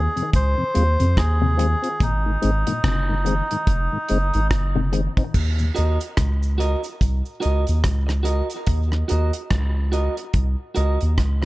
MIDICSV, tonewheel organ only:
0, 0, Header, 1, 2, 480
1, 0, Start_track
1, 0, Tempo, 833333
1, 1155, Time_signature, 4, 2, 24, 8
1, 6596, End_track
2, 0, Start_track
2, 0, Title_t, "Tonewheel organ"
2, 0, Program_c, 0, 16
2, 94, Note_on_c, 0, 41, 63
2, 94, Note_on_c, 0, 48, 64
2, 130, Note_off_c, 0, 41, 0
2, 130, Note_off_c, 0, 48, 0
2, 333, Note_on_c, 0, 41, 58
2, 334, Note_on_c, 0, 48, 61
2, 370, Note_off_c, 0, 41, 0
2, 370, Note_off_c, 0, 48, 0
2, 428, Note_on_c, 0, 56, 70
2, 429, Note_on_c, 0, 60, 64
2, 432, Note_on_c, 0, 65, 86
2, 481, Note_off_c, 0, 56, 0
2, 482, Note_off_c, 0, 60, 0
2, 483, Note_off_c, 0, 65, 0
2, 573, Note_on_c, 0, 41, 59
2, 577, Note_on_c, 0, 48, 61
2, 609, Note_off_c, 0, 41, 0
2, 611, Note_off_c, 0, 48, 0
2, 808, Note_on_c, 0, 41, 55
2, 811, Note_on_c, 0, 48, 52
2, 847, Note_off_c, 0, 41, 0
2, 849, Note_off_c, 0, 48, 0
2, 905, Note_on_c, 0, 56, 70
2, 906, Note_on_c, 0, 60, 67
2, 908, Note_on_c, 0, 65, 83
2, 960, Note_off_c, 0, 56, 0
2, 960, Note_off_c, 0, 60, 0
2, 961, Note_off_c, 0, 65, 0
2, 1049, Note_on_c, 0, 60, 68
2, 1056, Note_on_c, 0, 65, 75
2, 1088, Note_off_c, 0, 60, 0
2, 1091, Note_off_c, 0, 65, 0
2, 1301, Note_on_c, 0, 51, 55
2, 1304, Note_on_c, 0, 44, 55
2, 1334, Note_off_c, 0, 51, 0
2, 1335, Note_off_c, 0, 44, 0
2, 1392, Note_on_c, 0, 56, 72
2, 1393, Note_on_c, 0, 60, 72
2, 1395, Note_on_c, 0, 63, 89
2, 1443, Note_off_c, 0, 56, 0
2, 1444, Note_off_c, 0, 60, 0
2, 1445, Note_off_c, 0, 63, 0
2, 1540, Note_on_c, 0, 51, 57
2, 1542, Note_on_c, 0, 44, 60
2, 1573, Note_off_c, 0, 51, 0
2, 1574, Note_off_c, 0, 44, 0
2, 1780, Note_on_c, 0, 51, 57
2, 1782, Note_on_c, 0, 44, 58
2, 1813, Note_off_c, 0, 51, 0
2, 1814, Note_off_c, 0, 44, 0
2, 1878, Note_on_c, 0, 56, 70
2, 1882, Note_on_c, 0, 60, 66
2, 1882, Note_on_c, 0, 63, 80
2, 1926, Note_off_c, 0, 56, 0
2, 1928, Note_off_c, 0, 60, 0
2, 1928, Note_off_c, 0, 63, 0
2, 2024, Note_on_c, 0, 44, 63
2, 2025, Note_on_c, 0, 51, 61
2, 2055, Note_off_c, 0, 44, 0
2, 2055, Note_off_c, 0, 51, 0
2, 2259, Note_on_c, 0, 51, 59
2, 2260, Note_on_c, 0, 44, 56
2, 2292, Note_off_c, 0, 51, 0
2, 2293, Note_off_c, 0, 44, 0
2, 2357, Note_on_c, 0, 56, 71
2, 2361, Note_on_c, 0, 60, 69
2, 2362, Note_on_c, 0, 63, 86
2, 2406, Note_off_c, 0, 56, 0
2, 2407, Note_off_c, 0, 60, 0
2, 2408, Note_off_c, 0, 63, 0
2, 2505, Note_on_c, 0, 51, 60
2, 2506, Note_on_c, 0, 44, 64
2, 2535, Note_off_c, 0, 51, 0
2, 2536, Note_off_c, 0, 44, 0
2, 2737, Note_on_c, 0, 44, 59
2, 2738, Note_on_c, 0, 51, 53
2, 2772, Note_off_c, 0, 44, 0
2, 2772, Note_off_c, 0, 51, 0
2, 2834, Note_on_c, 0, 56, 75
2, 2836, Note_on_c, 0, 63, 78
2, 2837, Note_on_c, 0, 60, 67
2, 2884, Note_off_c, 0, 56, 0
2, 2885, Note_off_c, 0, 63, 0
2, 2886, Note_off_c, 0, 60, 0
2, 2978, Note_on_c, 0, 60, 68
2, 2984, Note_on_c, 0, 63, 71
2, 3012, Note_off_c, 0, 60, 0
2, 3015, Note_off_c, 0, 63, 0
2, 3224, Note_on_c, 0, 39, 50
2, 3226, Note_on_c, 0, 46, 49
2, 3255, Note_off_c, 0, 39, 0
2, 3256, Note_off_c, 0, 46, 0
2, 6596, End_track
0, 0, End_of_file